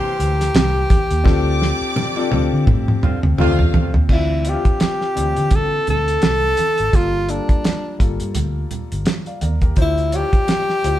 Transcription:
0.00 0.10 C3 loud
0.00 1.28 E3 medium
0.00 1.28 A#3 medium
0.00 1.24 D4 medium
0.00 3.40 G4 medium
0.00 1.24 A4 medium
0.00 0.56 A#4 medium
0.00 0.86 C5 loud
0.00 1.27 A5 medium
0.00 0.86 C6 loud
0.20 0.48 D2 medium
0.20 closed hi-hat medium
0.41 snare soft
0.41 closed hi-hat medium
0.55 0.83 C2 medium
0.55 snare loud
0.55 closed hi-hat medium
0.55 high conga medium
0.90 kick loud
0.90 closed hi-hat medium
0.90 high conga medium
1.11 1.23 D#2 medium
1.11 closed hi-hat soft
1.24 1.71 D2 loud
1.24 1.93 F3 medium
1.24 1.93 C4 medium
1.24 1.93 D4 medium
1.24 1.93 A4 loud
1.24 2.99 D5 loud
1.24 2.99 D6 loud
1.24 kick loud
1.24 snare medium
1.24 muted conga soft
1.62 snare medium
1.81 muted fingered electric bass stroke soft
1.96 high tom medium
1.96 high conga medium
2.16 2.28 F3 medium
2.16 2.28 C4 medium
2.16 2.28 D4 medium
2.16 2.29 A4 medium
2.30 2.48 D2 medium
2.30 3.36 F3 medium
2.30 3.37 C4 medium
2.30 3.38 D4 medium
2.30 3.38 A4 loud
2.30 high tom medium
2.53 2.65 D3 loud
2.67 2.96 A2 medium
2.67 kick loud
2.67 mid tom medium
2.67 muted conga medium
2.67 low conga medium
2.88 mid tom medium
3.03 3.20 D3 medium
3.03 3.20 C4 medium
3.03 3.20 F4 medium
3.03 muted fingered electric bass stroke soft
3.03 mid tom medium
3.03 low conga medium
3.23 3.36 D2 medium
3.23 mid tom medium
3.38 3.55 D2 medium
3.38 3.92 C3 medium
3.38 3.97 F3 medium
3.38 3.92 A3 medium
3.38 3.97 C4 medium
3.38 3.98 D4 medium
3.38 3.92 F4 loud
3.38 3.74 F4 medium
3.38 3.98 F4 medium
3.38 3.73 F5 loud
3.38 mid tom medium
3.38 high conga medium
3.59 3.71 E2 medium
3.59 floor tom medium
3.74 3.90 E2 medium
3.74 floor tom loud
3.74 high conga medium
3.94 4.07 D#2 medium
3.94 floor tom medium
4.09 4.55 D2 medium
4.09 4.37 E3 medium
4.09 4.38 C4 medium
4.09 4.38 D4 medium
4.09 4.50 E4 medium
4.09 4.38 F4 medium
4.09 kick medium
4.09 crash medium
4.09 muted conga soft
4.45 5.02 C4 medium
4.45 5.02 D4 medium
4.45 4.53 E4 medium
4.45 closed hi-hat medium
4.49 5.57 G4 medium
4.53 5.06 F4 medium
4.65 kick medium
4.65 closed hi-hat soft
4.80 snare medium
4.80 closed hi-hat medium
4.80 high conga medium
5.01 snare soft
5.15 5.33 D2 medium
5.15 6.24 E3 medium
5.15 6.24 C4 medium
5.15 6.24 D4 medium
5.15 6.25 E4 medium
5.15 closed hi-hat medium
5.36 5.78 D3 medium
5.36 closed hi-hat medium
5.51 kick medium
5.51 closed hi-hat medium
5.51 muted conga soft
5.51 low conga medium
5.55 5.89 A4 loud
5.87 6.16 D2 medium
5.87 6.97 A4 loud
5.87 closed hi-hat medium
5.87 muted conga soft
5.87 low conga medium
6.08 closed hi-hat soft
6.22 6.52 C2 medium
6.22 snare loud
6.22 closed hi-hat medium
6.22 high conga medium
6.57 closed hi-hat medium
6.57 high conga medium
6.78 6.91 G#1 medium
6.78 closed hi-hat soft
6.92 7.39 G1 loud
6.92 7.22 G3 medium
6.92 7.21 A#3 medium
6.92 7.22 F4 medium
6.92 7.32 F4 medium
6.92 7.22 A4 medium
6.92 kick medium
6.92 closed hi-hat medium
6.92 muted conga soft
7.28 7.85 G3 medium
7.28 7.85 A#3 medium
7.28 8.01 D4 medium
7.28 7.86 F4 medium
7.28 7.86 A4 medium
7.28 closed hi-hat medium
7.49 kick medium
7.49 closed hi-hat soft
7.64 snare medium
7.64 closed hi-hat medium
7.64 high conga medium
7.99 8.17 G1 medium
7.99 9.08 G3 medium
7.99 9.08 A#3 medium
7.99 9.09 F4 medium
7.99 9.07 A4 medium
7.99 kick medium
7.99 closed hi-hat medium
8.20 8.33 G2 medium
8.20 closed hi-hat medium
8.35 8.64 D2 medium
8.35 closed hi-hat medium
8.35 muted conga soft
8.35 low conga medium
8.71 closed hi-hat medium
8.71 low conga medium
8.92 9.04 G1 medium
8.92 closed hi-hat medium
9.06 snare loud
9.06 closed hi-hat medium
9.06 high conga medium
9.26 9.41 D5 soft
9.26 9.41 F5 medium
9.26 closed hi-hat soft
9.41 9.71 D#2 medium
9.41 9.61 A#4 medium
9.41 9.62 D5 medium
9.41 closed hi-hat medium
9.41 high conga medium
9.61 9.97 G4 medium
9.61 9.96 A#4 medium
9.61 kick medium
9.61 closed hi-hat soft
9.76 10.22 D2 medium
9.76 10.05 F3 medium
9.76 10.06 D4 medium
9.76 10.06 E4 medium
9.76 10.06 C5 medium
9.76 kick medium
9.76 closed hi-hat medium
9.76 muted conga soft
9.81 10.17 E4 medium
9.98 closed hi-hat soft
10.12 10.70 F3 medium
10.12 10.70 D4 medium
10.12 10.70 E4 medium
10.12 10.99 G4 loud
10.12 10.21 C#5 medium
10.12 closed hi-hat medium
10.20 10.73 D5 medium
10.33 muted fingered electric bass stroke soft
10.33 kick medium
10.33 closed hi-hat soft
10.48 snare medium
10.48 closed hi-hat medium
10.48 high conga medium
10.70 snare soft
10.83 10.99 D2 medium
10.83 10.99 F3 medium
10.83 10.99 D4 medium
10.83 10.99 E4 medium
10.83 10.99 C5 medium
10.83 closed hi-hat medium

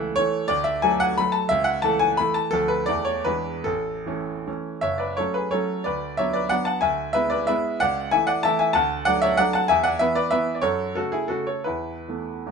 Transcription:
0.00 0.18 C#2 medium
0.00 0.13 E3 medium
0.00 0.14 A3 medium
0.00 0.14 A4 medium
0.00 0.16 E5 loud
0.00 0.18 F#5 loud
0.16 0.46 E3 medium
0.16 0.46 A3 medium
0.16 0.47 A4 medium
0.16 0.48 C#5 loud
0.48 0.83 D2 medium
0.48 0.65 D5 loud
0.64 0.83 E5 loud
0.82 1.15 F#3 medium
0.82 1.15 A3 medium
0.82 1.16 A4 medium
0.82 1.01 G#5 loud
1.00 1.18 F#5 loud
1.18 1.48 F#3 medium
1.18 1.48 A3 medium
1.18 1.48 A4 medium
1.18 1.34 B5 loud
1.32 1.49 A5 loud
1.49 1.83 C#2 medium
1.49 1.66 E5 loud
1.64 1.83 F#5 loud
1.82 2.15 E3 medium
1.82 2.15 A3 medium
1.82 2.15 A4 medium
1.82 2.00 A5 loud
1.99 2.18 G#5 loud
2.17 2.50 E3 medium
2.17 2.50 A3 medium
2.17 2.49 A4 medium
2.17 2.35 B5 loud
2.34 2.52 A5 loud
2.51 2.86 D2 medium
2.51 2.84 F3 medium
2.51 2.84 A3 medium
2.51 2.68 A4 loud
2.68 2.87 B4 loud
2.86 3.24 E2 medium
2.86 3.21 E3 medium
2.86 3.22 A3 medium
2.86 3.22 E4 medium
2.86 3.05 D5 loud
3.05 3.24 C#5 loud
3.24 3.63 E2 medium
3.24 3.61 E3 medium
3.24 3.61 G#3 medium
3.24 3.61 D4 medium
3.24 3.64 B4 loud
3.64 4.06 A1 medium
3.64 4.47 A4 loud
4.06 4.43 E3 medium
4.06 4.43 A3 medium
4.06 4.44 C#4 medium
4.47 4.80 E3 soft
4.47 4.80 A3 soft
4.47 4.80 C#4 medium
4.81 5.17 F#1 medium
4.81 4.98 C#5 medium
4.81 4.99 E5 loud
4.98 5.16 B4 medium
4.98 5.17 D5 medium
5.17 5.50 F#3 soft
5.17 5.50 A3 medium
5.17 5.50 C#4 medium
5.17 5.35 A4 medium
5.17 5.35 C#5 loud
5.34 5.52 G#4 medium
5.34 5.52 B4 medium
5.51 5.82 F#3 medium
5.51 5.82 A3 medium
5.51 5.83 C#4 medium
5.51 5.83 A4 medium
5.51 5.84 C#5 loud
5.84 6.18 D2 medium
5.84 6.16 B4 medium
5.84 6.18 D5 medium
6.17 6.49 F#3 medium
6.17 6.50 B3 medium
6.17 6.49 D4 medium
6.17 6.35 C#5 medium
6.17 6.35 E5 loud
6.33 6.51 B4 medium
6.33 6.49 D5 loud
6.49 6.80 F#3 medium
6.49 6.80 B3 medium
6.49 6.80 D4 medium
6.49 6.66 D5 medium
6.49 6.65 F#5 loud
6.65 6.82 F#5 medium
6.65 6.82 A5 medium
6.81 7.14 D2 medium
6.81 7.11 E5 medium
6.81 7.14 G#5 loud
7.13 7.45 G#3 medium
7.13 7.46 B3 medium
7.13 7.46 E4 medium
7.13 7.30 B4 medium
7.13 7.31 E5 loud
7.30 7.47 B4 medium
7.30 7.48 D5 loud
7.47 7.78 G#3 medium
7.47 7.78 B3 medium
7.47 7.78 E4 medium
7.47 7.78 B4 medium
7.47 7.80 E5 loud
7.80 8.12 C#2 medium
7.80 8.11 D5 medium
7.80 8.12 F#5 loud
8.11 8.41 E3 medium
8.11 8.42 A3 medium
8.11 8.42 E4 medium
8.11 8.27 E5 medium
8.11 8.28 G#5 loud
8.27 8.43 D5 medium
8.27 8.43 F#5 loud
8.43 8.72 E3 medium
8.43 8.73 A3 medium
8.43 8.73 E4 medium
8.43 8.59 E5 loud
8.43 8.59 A5 loud
8.59 8.74 E5 medium
8.59 8.75 G#5 loud
8.73 9.06 D2 medium
8.73 9.04 F#5 medium
8.73 9.05 A5 loud
9.05 9.36 F#3 medium
9.05 9.36 A3 medium
9.05 9.36 D4 medium
9.05 9.21 D5 loud
9.05 9.22 F#5 loud
9.22 9.38 C#5 medium
9.22 9.38 E5 loud
9.37 9.66 F#3 medium
9.37 9.66 A3 medium
9.37 9.67 D4 medium
9.37 9.53 D5 medium
9.37 9.53 F#5 loud
9.53 9.68 F#5 medium
9.53 9.69 A5 loud
9.68 10.00 E2 medium
9.68 9.83 E5 loud
9.68 9.84 G#5 loud
9.84 9.99 D5 medium
9.84 10.00 F#5 loud
9.99 10.29 E3 medium
9.99 10.29 B3 medium
9.99 10.15 B4 medium
9.99 10.16 E5 loud
10.15 10.30 B4 medium
10.15 10.31 D5 loud
10.31 10.60 E3 medium
10.31 10.60 B3 medium
10.31 10.54 B4 medium
10.31 10.56 E5 loud
10.55 10.62 D5 medium
10.62 10.95 F#2 medium
10.62 10.94 A4 medium
10.62 10.96 C#5 loud
10.95 11.27 C#3 soft
10.95 11.27 A3 medium
10.95 11.12 F#4 medium
10.95 11.13 A4 medium
11.12 11.29 E4 medium
11.12 11.29 G#4 medium
11.28 11.62 C#3 medium
11.28 11.62 A3 medium
11.28 11.46 F#4 medium
11.28 11.46 A4 medium
11.47 11.65 A4 medium
11.47 11.65 C#5 medium
11.64 12.06 E2 medium
11.64 12.51 E4 medium
11.64 12.51 B4 medium
12.08 12.42 E3 soft
12.08 12.42 A3 soft
12.08 12.42 B3 soft
12.46 12.51 E2 medium
12.46 12.51 E3 soft
12.46 12.51 G#3 soft
12.46 12.51 B3 soft

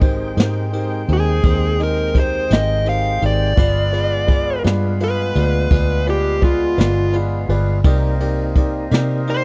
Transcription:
0.00 0.33 G#1 loud
0.00 3.53 G#3 medium
0.00 3.54 C4 medium
0.00 0.27 D#4 medium
0.00 0.28 G4 medium
0.00 0.28 A#4 medium
0.00 0.28 C5 medium
0.00 3.53 G5 medium
0.00 kick medium
0.00 ride medium
0.36 1.04 G#2 medium
0.36 0.63 D#4 medium
0.36 0.64 G4 medium
0.36 0.64 A#4 medium
0.36 0.64 C5 medium
0.36 snare loud
0.36 ride medium
0.72 0.99 D#4 medium
0.72 0.99 G4 medium
0.72 0.99 A#4 medium
0.72 1.00 C5 medium
0.72 ride medium
1.08 1.41 D#2 medium
1.08 1.35 D#4 medium
1.08 1.35 G4 soft
1.08 1.35 A#4 medium
1.08 1.36 C5 medium
1.08 ride medium
1.13 1.80 G#4 medium
1.44 2.46 D#2 medium
1.44 1.70 D#4 medium
1.44 1.71 G4 soft
1.44 1.71 A#4 medium
1.44 1.71 C5 medium
1.44 kick loud
1.44 ride medium
1.78 2.05 D#4 medium
1.78 2.06 G4 medium
1.78 2.06 A#4 medium
1.78 2.06 D#5 medium
1.78 ride medium
1.83 2.16 A#4 medium
2.14 2.41 D#4 medium
2.14 2.41 G4 medium
2.14 2.41 A#4 medium
2.14 2.42 C5 medium
2.14 kick medium
2.14 ride medium
2.20 2.52 C5 medium
2.49 3.18 G#1 loud
2.49 2.76 D#4 medium
2.49 2.77 G4 soft
2.49 2.77 A#4 medium
2.49 2.77 C5 medium
2.49 2.86 D#5 medium
2.49 ride medium
2.53 snare loud
2.84 3.12 D#4 medium
2.84 3.12 G4 soft
2.84 3.12 A#4 soft
2.84 3.12 C5 medium
2.84 ride medium
2.89 3.22 F5 medium
3.21 3.55 G#1 loud
3.21 3.48 D#4 medium
3.21 3.48 G4 medium
3.21 3.48 A#4 medium
3.21 3.49 C5 medium
3.21 ride medium
3.26 4.62 D5 medium
3.56 4.60 G1 loud
3.56 7.80 G#3 medium
3.56 7.81 B3 medium
3.56 3.83 F4 medium
3.56 7.80 F4 medium
3.56 3.84 G#4 medium
3.56 3.84 B4 medium
3.56 3.84 D5 medium
3.56 kick loud
3.56 ride medium
3.92 4.19 F4 medium
3.92 4.19 G#4 soft
3.92 4.19 B4 medium
3.92 4.20 D5 medium
3.92 ride medium
4.27 4.54 F4 medium
4.27 4.54 G#4 medium
4.27 4.55 B4 medium
4.27 4.55 D5 medium
4.27 kick medium
4.27 ride medium
4.63 5.31 G2 medium
4.63 4.90 F4 medium
4.63 4.91 G#4 medium
4.63 4.91 B4 medium
4.63 4.91 D5 medium
4.63 snare loud
4.63 ride medium
5.00 5.26 F4 medium
5.00 5.27 G#4 medium
5.00 5.27 B4 medium
5.00 5.27 F5 medium
5.00 ride medium
5.04 6.05 B4 loud
5.35 5.68 D2 medium
5.35 5.62 F4 medium
5.35 5.62 G#4 soft
5.35 5.62 B4 medium
5.35 5.63 D5 medium
5.35 ride medium
5.71 6.74 D2 medium
5.71 5.97 F4 medium
5.71 5.98 G#4 medium
5.71 5.98 B4 medium
5.71 5.98 D5 medium
5.71 kick loud
5.71 snare soft
5.71 ride medium
6.06 6.33 F4 medium
6.06 6.43 G4 medium
6.06 6.33 G#4 medium
6.06 6.33 B4 medium
6.06 6.33 D5 medium
6.06 ride medium
6.41 6.68 F4 medium
6.41 6.78 F4 medium
6.41 6.68 G#4 medium
6.41 6.68 B4 medium
6.41 6.69 D5 medium
6.41 kick medium
6.41 ride medium
6.77 7.45 G1 loud
6.77 7.04 F4 medium
6.77 7.13 F4 loud
6.77 7.04 G#4 medium
6.77 7.04 B4 medium
6.77 7.05 D5 medium
6.77 snare loud
6.77 ride medium
7.12 7.39 F4 medium
7.12 7.40 G#4 soft
7.12 7.40 B4 soft
7.12 7.40 D5 medium
7.12 ride medium
7.48 7.82 G1 loud
7.48 7.75 F4 medium
7.48 7.76 G#4 medium
7.48 7.76 B4 medium
7.48 7.76 D5 medium
7.48 ride medium
7.84 8.87 C2 loud
7.84 9.44 A#3 medium
7.84 9.44 C4 medium
7.84 8.11 D#4 medium
7.84 9.44 D#4 medium
7.84 8.11 G4 medium
7.84 8.11 A#4 medium
7.84 8.12 D5 loud
7.84 kick loud
7.84 ride medium
8.19 8.47 D#4 medium
8.19 8.47 G4 medium
8.19 8.47 A#4 medium
8.19 8.47 D5 medium
8.19 ride medium
8.55 8.82 D#4 medium
8.55 8.83 G4 medium
8.55 8.83 A#4 medium
8.55 8.83 D5 medium
8.55 kick medium
8.55 ride medium
8.91 9.44 C3 loud
8.91 9.18 D#4 medium
8.91 9.18 G4 medium
8.91 9.18 A#4 medium
8.91 9.19 D5 medium
8.91 snare loud
8.91 ride medium
9.27 9.44 D#4 medium
9.27 9.44 G4 medium
9.27 9.44 A#4 medium
9.27 9.44 C5 loud
9.27 9.44 D5 medium
9.27 ride medium

